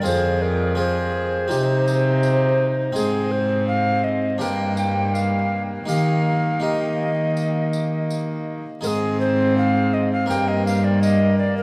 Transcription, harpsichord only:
0.02 C4 F4 G#4
0.06 F2
0.75 C4 F4 G#4
1.48 C3 C4 D#4 G4
2.93 C4 D#4 G#4
2.97 G#2
4.38 G2 D4 G4 A#4
5.86 D#3 D#4 G4 A#4
6.60 D#4 G4 A#4
8.81 G#2 D#4 G#4 C5
10.26 A#3 A#4
10.30 G2

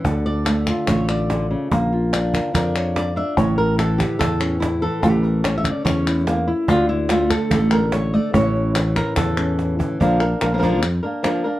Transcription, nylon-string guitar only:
0.05 D3 A4
0.26 D5
0.45 A3 A4
0.69 F4
0.87 A3 C#5
1.09 D5
1.31 D3
1.51 C#3
1.72 A#3
1.93 F4
2.13 D4
2.34 A#4
2.54 D4 A#4
2.76 C#5
2.97 D5
3.16 D4 E5
3.37 A2 C#5
3.58 A#4
3.78 E3 A4
3.98 G4
4.19 E3 A4
4.40 C#4
4.60 E4
4.82 E3 A4
5.03 A3 G4
5.23 A#4
5.44 C#4 C#5
5.58 E5
5.71 D5
5.85 C#4 C#5
6.07 E4
6.27 A#3
6.47 E4
6.68 D3 A3 F4
6.89 E4
7.10 A3 F4
7.30 A4
7.52 A3 A4
7.72 A#4
7.93 C#5
8.14 A3 D5
8.33 A2 E3 C#4 E4 C#5
8.76 E3
8.96 A#4
9.17 E3 A4
9.38 C#4
9.79 E3
10.00 D3 F3 A#3 D4 A#4
10.20 A#3 D4 A#4
10.42 A#3 D4 A#4
10.54 F3 A#3 D4 A#4
10.58 F3 A#3 D4 A#4
10.62 D3 F3 A#3 D4 A#4
10.82 muted nylon-string guitar stroke
11.03 A#3 D4 A#4
11.23 F3 A#3 D4 A#4
11.44 A#3 D4 A#4

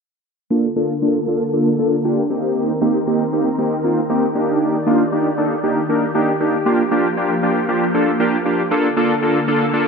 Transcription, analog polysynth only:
0.51 A#3 D4 F4 A4
0.76 A#3 D4 F4 A4
1.02 A#3 D4 F4 A4
1.27 A#3 D4 F4 A4
1.53 A#3 D4 F4 A4
1.79 A#3 D4 F4 A4
2.04 A#3 D4 F4 G4
2.30 A#3 C4 D#4 G4
2.81 A#3 C4 D#4 G4
3.07 A#3 C4 D#4 G4
3.33 A#3 C4 D#4 G4
3.58 A#3 C4 D#4 G4
3.84 A#3 C4 D#4 F4
4.09 A#3 C4 D#4 G4
4.35 A#3 D4 D#4 G4
4.87 A#3 D4 D#4 F4
5.12 A#3 D4 D#4 G4
5.38 A#3 D4 D#4 A4
5.63 A#3 D4 D#4 G4
5.89 A#3 D4 D#4 A#4
6.15 A#3 D4 D#4 G4
6.40 A#3 D4 D#4 G4
6.66 A#3 D4 F4 G4
6.91 A#3 D4 F4 G4
7.17 A#3 D4 F4 G4
7.43 A#3 D4 F4 G4
7.69 A#3 D4 F4 G4
7.94 A#3 D4 F4 A4
8.20 A#3 D4 F4 G4
8.45 A#3 D4 F4 G4
8.71 A#3 D4 F4 A4
8.97 A#3 D4 F4 A4
9.22 A#3 D4 F4 A4
9.48 A#3 D4 F4 A4
9.73 A#3 D4 F4 A4

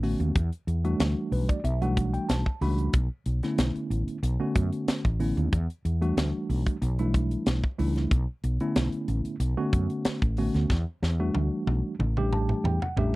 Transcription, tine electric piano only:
0.03 D3 A3 B3 C#4 F#4
0.84 E3 G3 A3 D4 F#4
1.32 B4
1.49 D5
1.65 E5
1.82 E3 G3 A3 D4 F#4 F#5
2.14 G5
2.29 A5
2.62 E3 G3 A3 D4 F#4 B5
3.43 D3 A3 B3 C#4 E4
4.40 D3 A3 B3 C#4 F#4
5.20 D3 A3 B3 C#4 E4
6.01 E3 G3 A3 D4 F#4
6.99 E3 G3 A3 D4 E4
7.79 E3 G3 A3 D4 E4
8.61 D3 A3 B3 C#4 E4
9.57 D3 A3 B3 C#4 F#4
10.38 D3 A3 B3 C#4 F#4
11.20 E3 G3 A3 D4 F#4
12.17 E3 G3 A3 D4 G4
12.33 A5
12.65 G5
12.82 F#5
12.98 E3 G3 A3 D4 G4 E5

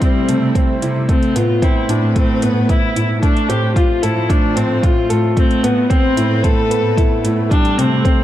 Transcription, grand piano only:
Already playing: G3 A3 C4 E4
0.02 G3
0.29 A3
0.55 C4
0.82 E4
1.09 A3
1.36 B3
1.62 C4
1.89 E4
2.16 A3
2.43 B3
2.69 E4
2.96 E4
3.23 A3
3.49 C4
3.76 F4
4.03 A4
4.29 A3
4.56 C4
4.83 F4
5.10 A4
5.36 A3
5.63 B3
5.90 C4
6.17 E4
6.44 A3
6.71 B3
6.98 E4
7.25 E4
7.51 G3
7.78 A3
8.05 C4

